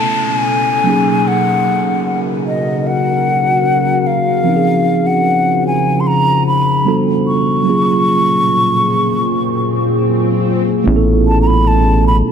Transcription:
Already playing: B2 A3 B3 C#4 E4 A4 A5, downlifter
0.27 G#5
0.84 C#3 F#3 A#3 C#4 F#4 A#4
0.88 D#4 G#4
1.28 F#5
2.47 D#5
2.87 F#5
4.07 F5
4.44 F3 C4 C#4 C5, swell
4.48 D#4 F#4
4.56 G#4
5.07 F#5
5.67 G#5
6.00 C6
6.07 A#5
6.47 B5
6.85 G3 B3 D4 F#4 A4
7.27 C#6
7.64 A#2 F#3 A#3 C#4 F4 G#4
7.68 F4 G#4
10.84 A1 B2 A3 B3 C#4 A4
10.88 E4 G#4
10.96 A4
11.28 A5
11.42 A#5
11.47 B5
11.67 A5
12.07 B5

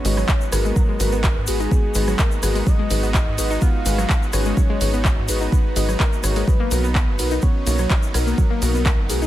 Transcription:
Already playing: G#3 B3 D#4 F#4 C#5, impact
0.05 G#1 G#3 D#4 F#4 G#4 B4, open hi-hat, shaker
0.17 F#3, cross-stick, shaker
0.29 kick, clap, shaker
0.41 shaker
0.52 G#1 D#4 F#4 G#4 A#4 B4, cross-stick, open hi-hat, shaker
0.65 G#3, shaker
0.76 F#3, kick, shaker
0.89 G#3
1.00 G#1 D#4 F#4 G#4 B4, open hi-hat, shaker
1.12 B3, shaker
1.24 kick, clap, shaker
1.36 G#2
1.47 G#1 D#4 F#4 G#4 B4, open hi-hat, shaker
1.60 D#4, shaker
1.71 B3, kick, shaker
1.94 G#1 G#3 D#4 F#4 G#4 B4, open hi-hat, shaker
2.08 F#3, cross-stick, shaker
2.19 A#4, kick, clap, shaker
2.31 shaker
2.43 G#1 D#4 F#4 G#4 B4, cross-stick, open hi-hat, shaker
2.55 G#3, open hi-hat, shaker
2.67 F#3 D#5, kick, shaker
2.79 G#3
2.90 G#1 D#4 F#4 G#4 B4, open hi-hat, shaker
3.03 B3, shaker
3.14 D#5, kick, clap, shaker
3.27 G#2
3.38 G#1 D#4 F#4 G#4 B4, open hi-hat, shaker
3.50 D#4, shaker
3.61 B3 F5, kick, shaker
3.86 G#1 G#3 D#4 F#4 G#4 B4, open hi-hat, shaker
3.98 F#3, cross-stick, shaker
4.09 kick, clap, shaker
4.23 shaker
4.33 G#1 D#4 F#4 G#4 B4 C#5, cross-stick, open hi-hat, shaker
4.45 G#3, shaker
4.57 F#3, kick, shaker
4.70 G#3
4.81 G#1 D#4 F#4 G#4 B4, open hi-hat, shaker
4.93 B3, shaker
5.05 kick, clap, shaker
5.17 G#2
5.28 G#1 D#4 F#4 G#4 B4, open hi-hat, shaker
5.41 D#4, shaker
5.52 B3, kick, shaker
5.76 G#1 G#3 D#4 F#4 G#4 D#5, open hi-hat, shaker
5.89 F#3, cross-stick, shaker
6.00 A#4, kick, clap, shaker
6.13 shaker
6.23 G#1 D#4 F#4 G#4 C#5, cross-stick, open hi-hat, shaker
6.36 G#3, open hi-hat, shaker
6.47 F#3 B3 B4, kick, shaker
6.60 A#3
6.71 B1 B3 D#4 F#4 A#4, open hi-hat, shaker
6.84 B3, shaker
6.95 B4, kick, clap, shaker
7.08 F#1
7.19 B1 B3 D#4 F#4 A#4, open hi-hat, shaker
7.31 D#4, shaker
7.42 B3 C#5, kick, shaker
7.66 B1 A#3 B3 D#4 F#4 A#4, open hi-hat, shaker
7.78 F#3, cross-stick, shaker
7.90 kick, clap, shaker
8.03 shaker
8.14 B1 B3 D#4 F#4 A#4, cross-stick, open hi-hat, shaker
8.27 A#3, shaker
8.38 F#3, kick, shaker
8.50 A#3
8.62 B1 B3 D#4 F#4 A#4, open hi-hat, shaker
8.74 B3, shaker
8.85 kick, clap, shaker
8.98 F#1
9.09 B1 B3 D#4 F#4 G#4 A#4, open hi-hat, shaker
9.22 D#4, shaker

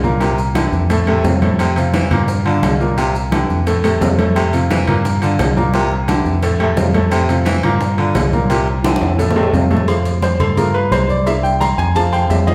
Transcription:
Already playing: C2
0.03 A#2 A#3 A#4, high conga, maracas
0.20 A#2 C3 A#3 A#4, high bongo, high conga, high timbale, maracas
0.38 high bongo, high conga, maracas
0.55 D3 E3 E4 G4, high bongo, high conga, high timbale, low timbale, maracas
0.72 F2, high bongo, high conga, maracas
0.90 A2 A3 A4, high bongo, high conga, high timbale, maracas
1.07 A2 C3 A3 A4, high conga, high timbale
1.24 F2 C3 C4 F4, high bongo, low bongo, high conga, low timbale, maracas
1.42 A2 A3 A4, high bongo, high conga, high timbale, maracas
1.59 C3, high bongo, high conga, high timbale, maracas
1.76 C3 C4 F4, high conga, high timbale, maracas
1.94 E3, high bongo, high conga, high timbale, low timbale, maracas
2.11 G2 A#2 A#3 A#4, high conga, low conga, high timbale, maracas
2.28 high bongo, high conga, maracas
2.46 D3 D4 F4, high conga, high timbale
2.63 C2, high bongo, low bongo, high conga, high timbale, low timbale, maracas
2.80 A#2 A#3 A#4, maracas
2.97 A#2 C3 A#3 A#4, high bongo, high timbale, maracas
3.15 high bongo, high conga, maracas
3.31 D3 E3 E4 G4, high bongo, high conga, high timbale, low timbale, maracas
3.50 F2, high bongo, high conga, maracas
3.67 A2 A3 A4, high bongo, high conga, high timbale, maracas
3.84 A2 C3 A3 A4, high conga, high timbale, maracas
4.01 F2 C3 C4 F4, high bongo, low bongo, high conga, low timbale, maracas
4.18 A2 A3 A4, high bongo, high conga, high timbale, maracas
4.36 C3, high bongo, high conga, high timbale, maracas
4.53 C3 C4 F4, high conga, high timbale, maracas
4.71 E3, high bongo, high conga, high timbale, low timbale, maracas
4.87 G2 A#2 A#3 A#4, high conga, low conga, high timbale, maracas
5.05 high bongo, high conga, maracas
5.22 D3 D4 F4, high conga, high timbale, maracas
5.39 C2, high bongo, low bongo, high conga, high timbale, low timbale, maracas
5.57 A#2 A#3 A#4, high conga, maracas
5.73 A#2 C3 A#3 A#4, high bongo, high conga, high timbale, maracas
5.91 high bongo, high conga
6.08 D3 E3 E4 G4, high bongo, high conga, high timbale, low timbale, maracas
6.25 F2, high bongo, high conga, maracas
6.43 A2 A3 A4, high bongo, high conga, high timbale, maracas
6.59 A2 C3 A3 A4, high conga, high timbale
6.77 F2 C3 C4 F4, high bongo, low bongo, high conga, low timbale, maracas
6.94 A2 A3 A4, high bongo, high conga, high timbale, maracas
7.11 C3, high bongo, high conga, high timbale, maracas
7.29 C3 C4 F4, high conga, high timbale, maracas
7.46 E3, high bongo, high conga, high timbale, low timbale, maracas
7.63 G2 A#2 A#3 A#4, high conga, low conga, high timbale, maracas
7.81 high bongo, high conga, maracas
7.98 D3 D4 F4, high conga, high timbale
8.15 C2, high bongo, low bongo, high conga, high timbale, low timbale, maracas
8.33 A#2 A#3 A#4, high conga, maracas
8.50 A#2 C3 A#3 A#4, high bongo, high timbale, maracas
8.67 high bongo, high conga
8.84 D3 E3 E4 G4, high bongo, high conga, high timbale, maracas
8.96 high bongo
9.01 F2, high conga, high timbale, maracas
9.18 A2 A3 A4, low bongo, high conga, maracas
9.31 low bongo
9.36 A2 C3 A3 A4, high conga, low timbale
9.53 F2 C3 C4 F4, high conga, low timbale, maracas
9.71 A2 A3 A4, high conga, low timbale, maracas
9.77 low bongo
9.87 A3 C4 F4, cowbell, high conga, low agogo, maracas
10.05 cowbell, high conga, maracas
10.22 C5, cowbell, high conga, low timbale, low agogo, maracas
10.40 G2 A4, cowbell, high conga, low conga, low agogo, maracas
10.57 A3 A#3 F4 A#4, cowbell, high conga, low conga, maracas
10.74 B4, high conga, low agogo
10.91 C2 C5, cowbell, high conga, low timbale, low agogo, maracas
11.09 D5, high conga, maracas
11.26 A#3 D4 E4 E5, cowbell, low agogo, maracas
11.43 G5, high conga, maracas
11.61 A#5, cowbell, high conga, low timbale, low agogo, maracas
11.78 F2 G#5, cowbell, high conga, maracas
11.95 A3 C4 F4 A5, cowbell, high conga, low agogo, maracas
12.13 G5, high conga, low agogo, maracas
12.30 F2 E5, cowbell, high conga, low timbale, maracas
12.47 A3 C4 F4 D#5, cowbell, high conga, low agogo, maracas

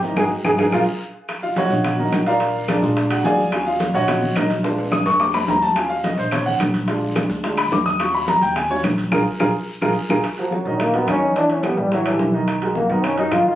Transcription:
Already playing: G#1
0.03 D#3 D#4 E4 D#5, high conga, short guiro
0.16 G#1 D#4 F#4 G#4, low bongo, high conga, high timbale, long guiro, claves
0.44 G#1 D#4 F#4 G#4, low bongo, high conga, high timbale, long guiro, claves
0.58 G#1 D#4 F#4 G#4, low bongo, high conga, high timbale, long guiro, claves
0.72 A#1 F4 G#4 A#4, low bongo, high conga, high timbale, long guiro, claves
1.29 high bongo, high conga, high timbale, long guiro, claves
1.42 F4 F5, high bongo, high conga
1.56 F#4 C#5 D#5 F#5, high bongo, high conga, high timbale, low timbale, short guiro
1.70 A#1 F#3 C#4 F4, high bongo, short guiro
1.84 high bongo, high conga, low conga, high timbale, long guiro, claves
1.98 D#4 F#4 A#4 D#5, high conga, low conga
2.12 A#1, high bongo, low bongo, high conga, high timbale, low timbale, short guiro, claves
2.26 F4 A#4 D5 F5, high bongo, high timbale, short guiro
2.40 high bongo, high conga, high timbale, long guiro
2.54 high bongo, high conga
2.68 D4 G#4 A#4 D5, high bongo, high conga, high timbale, low timbale, short guiro, claves
2.82 A#2 G#3 D4 F4, high bongo, short guiro
2.97 high bongo, high conga, high timbale, long guiro
3.10 F#4 F#5, high conga, high timbale, claves
3.24 D#2 G#4 D5 F5 G#5, high bongo, low bongo, high conga, low timbale, short guiro
3.38 high bongo, high conga, short guiro
3.52 F#3 C#4 F4, high bongo, high conga, high timbale, long guiro, claves
3.66 F4 F5, high bongo, high conga
3.80 high bongo, high conga, high timbale, low timbale, short guiro
3.94 A#1 F#4 C#5 D#5 F#5, high bongo, short guiro
4.08 F#3 C#4 F4, high bongo, high conga, low conga, high timbale, long guiro, claves
4.22 high conga, low conga
4.35 A#1 D#4 F#4 A#4 D#5, high bongo, low bongo, high conga, high timbale, low timbale, short guiro, claves
4.50 high bongo, high conga, high timbale, short guiro
4.63 G#3 D4 F4, high bongo, high conga, high timbale, long guiro
4.77 high bongo, high conga, high timbale
4.92 D#6, high bongo, high conga, short guiro, claves
5.06 F2 C#6, high bongo, high timbale, short guiro
5.20 D6, high bongo, high conga, low timbale, long guiro
5.34 B5, high conga, low timbale, claves
5.48 D#2 A#5, high bongo, low bongo, high conga, low timbale, short guiro
5.62 A5, high bongo, high conga, low timbale, short guiro
5.75 F#3 C#4 F4 G#5, high bongo, high conga, high timbale, long guiro, claves
5.89 F5, high bongo, high conga
6.04 D#5, high bongo, high conga, high timbale, low timbale, short guiro
6.17 A#1 C5, high bongo, short guiro
6.31 C#5, high bongo, high conga, low conga, high timbale, long guiro, claves
6.46 F#5, high conga, low conga
6.59 A#1, high bongo, low bongo, high conga, high timbale, low timbale, short guiro, claves
6.74 high bongo, high conga, high timbale, short guiro
6.88 G#3 D4 F4, high bongo, high conga, high timbale, long guiro
7.02 high bongo, high conga
7.16 high bongo, high conga, high timbale, low timbale, short guiro, claves
7.29 D2, high bongo, short guiro
7.44 G#3 D4 F4, high bongo, high conga, high timbale, long guiro
7.57 B5, high conga, high timbale, claves
7.71 D#2 D6, high bongo, low bongo, high conga, low timbale, short guiro
7.86 D#6, high bongo, high conga, short guiro
8.00 F#3 C#4 F4 C#6, high bongo, high conga, high timbale, long guiro, claves
8.14 B5, high bongo, high conga
8.28 A#5, high bongo, high conga, high timbale, low timbale, short guiro
8.41 D#2 G5, high bongo, high conga, short guiro
8.56 G#5, high bongo, high conga, low conga, high timbale, long guiro, claves
8.70 F#3 C#4 F4 C#5, high conga
8.84 A#1, high bongo, low bongo, high conga, high timbale, low timbale, short guiro, claves
8.98 high bongo, high conga, high timbale, short guiro
9.11 A#1 F4 G#4 A#4, low bongo, high conga, high timbale, long guiro, claves
9.39 A#1 F4 G#4 A#4, low bongo, high conga, high timbale, long guiro, claves
9.81 A#1 F4 G#4 A#4, low bongo, high conga, high timbale, long guiro, claves
10.09 A#1 F4 G#4 A#4, low bongo, high conga, high timbale, long guiro, claves
10.23 high bongo, high conga, high timbale, claves
10.37 F3 F#3 F#4 A#4, high conga, high timbale
10.51 F#3, high bongo, high conga
10.65 A#1 D#3 D#4 D#5, high conga
10.80 A#3, high bongo, high conga, high timbale, claves
10.93 F#3 B3 F#4 A#4, high conga, high timbale
11.07 E2 D#3 C#4 D#4 D#5, high bongo, low bongo, high conga, high timbale, claves
11.21 high conga
11.35 E3 D4 E4 E5, high bongo, high conga, high timbale
11.49 C#4, high bongo, high conga, high timbale
11.63 G3 B3 G4 B4, high bongo, high conga, high timbale, claves
11.77 A1 G3, high conga
11.92 E3 F#3 E4 E5, high bongo, high conga, high timbale
12.05 E3 G3 G4 A4, high bongo, high conga, high timbale, claves
12.19 B1, high bongo, low bongo, high conga
12.34 D#3 D#4 D#5, high bongo, high conga
12.48 high bongo, high conga, high timbale, claves
12.62 F#3 G#3 F#4 A#4, high conga, high timbale
12.75 A#3, high bongo, high conga
12.89 F#2 D#3 B3 D#4 D#5, high conga
13.04 C#4, high bongo, high conga, high timbale, claves
13.17 F#3 D#4 F#4 A#4, high conga, high timbale
13.31 G#2 D#3 D#4 F4 D#5, high bongo, low bongo, high conga, high timbale, claves
13.46 F4, high conga

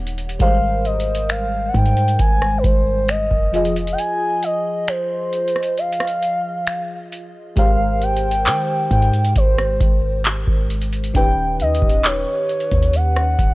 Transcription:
Already playing: D#1 D#3 B3 D#4 G4 C#5, downlifter
0.07 closed hi-hat
0.18 closed hi-hat
0.29 closed hi-hat
0.39 G#1 G3 G#3 A#4 C5 F5, kick, closed hi-hat
0.85 D#5, closed hi-hat
1.00 closed hi-hat
1.15 closed hi-hat
1.29 F5, finger snap, closed hi-hat
1.69 F#5
1.74 G#2 G5, kick, closed hi-hat
1.86 closed hi-hat
1.97 closed hi-hat
2.08 closed hi-hat
2.19 G#1 G#5, kick, closed hi-hat
2.42 cross-stick
2.58 B4
2.64 G#1 C5, kick, closed hi-hat
3.08 D#5, finger snap, closed hi-hat
3.31 F1, kick
3.53 F3 F4 G#4 D#5, closed hi-hat
3.65 closed hi-hat
3.76 closed hi-hat
3.87 closed hi-hat
3.92 G5
3.98 G#5, closed hi-hat
4.43 D#5, closed hi-hat
4.88 C5, finger snap, closed hi-hat
5.33 closed hi-hat
5.48 closed hi-hat
5.56 cross-stick
5.63 closed hi-hat
5.77 F5, closed hi-hat
5.92 closed hi-hat
6.00 cross-stick
6.07 closed hi-hat
6.22 closed hi-hat
6.67 finger snap, closed hi-hat
7.12 closed hi-hat
7.56 G#1 G#3 G4 A#4 C5 F5, kick, closed hi-hat
8.02 G5, closed hi-hat
8.16 closed hi-hat
8.31 closed hi-hat
8.46 D#3, clap, closed hi-hat
8.91 G#2 G5, kick, closed hi-hat
9.02 closed hi-hat
9.13 closed hi-hat
9.25 closed hi-hat
9.36 G#1 C5, kick, closed hi-hat
9.58 cross-stick
9.81 G#1, kick, closed hi-hat
10.25 clap, closed hi-hat
10.47 G#1, kick
10.70 closed hi-hat
10.81 closed hi-hat
10.93 closed hi-hat
11.04 closed hi-hat
11.14 D#1 D#3 C#4 D#4 G4 B4 G5, kick, closed hi-hat
11.60 D#2 D#5, closed hi-hat
11.75 closed hi-hat
11.82 D#1, kick
11.90 closed hi-hat
12.04 C#5, clap, closed hi-hat
12.49 closed hi-hat
12.60 closed hi-hat
12.71 D#2, kick, closed hi-hat
12.83 closed hi-hat
12.93 F#5, closed hi-hat
13.16 cross-stick
13.39 D#1, kick, closed hi-hat

